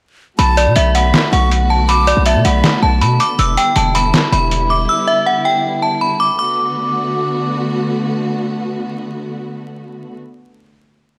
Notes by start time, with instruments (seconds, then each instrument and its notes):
0.39 808-style bass B1, string section D3 A3 B3 F#4, flute A5, synth bell B5, closed hi-hat
0.57 synth bell D5, closed hi-hat
0.67 808-style bass B2
0.76 808-style bass B1, synth bell E5, flute B5, closed hi-hat
0.95 synth bell F#5, flute B5, closed hi-hat
1.14 snare, clap, closed hi-hat
1.33 808-style bass B1, synth bell F#5, flute C#6, closed hi-hat
1.51 closed hi-hat
1.70 synth bell A5
1.89 synth bell B5, flute D6, closed hi-hat
2.07 synth bell D5, closed hi-hat
2.17 808-style bass B1
2.26 synth bell E5, flute A5, closed hi-hat
2.36 808-style bass B2
2.45 808-style bass B1, synth bell F#5, flute B5, closed hi-hat
2.64 snare, clap, closed hi-hat
2.83 808-style bass B1, synth bell A5, flute A5
3.01 808-style bass B2, synth bell B5, closed hi-hat
3.20 synth bell D6, closed hi-hat
3.39 808-style bass E1, string section G3 E4, synth bell E6, closed hi-hat
3.57 synth bell G5, closed hi-hat
3.76 808-style bass E1, synth bell A5, closed hi-hat
3.95 synth bell B5, closed hi-hat
4.14 snare, clap, closed hi-hat
4.32 808-style bass E1, synth bell B5, closed hi-hat
4.51 closed hi-hat
4.70 synth bell D6
4.89 synth bell E6
5.07 synth bell E5
5.26 synth bell F#5
5.45 synth bell G5
5.82 synth bell A5
6.01 synth bell B5
6.20 synth bell D6
6.39 string section D3 A3 B3 F#4, synth bell D6